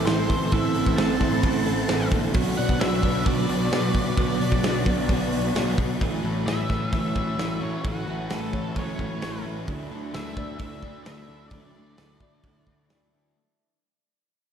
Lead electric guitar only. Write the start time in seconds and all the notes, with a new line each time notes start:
0.06 C5
0.52 E5
0.96 A5
2.57 F#5
2.80 E5
3.27 D5
6.46 E5
6.92 E5
7.63 C#5
7.87 F#4
8.34 A4
8.79 C#5
10.14 E5
10.59 E5
11.04 E5
11.48 D5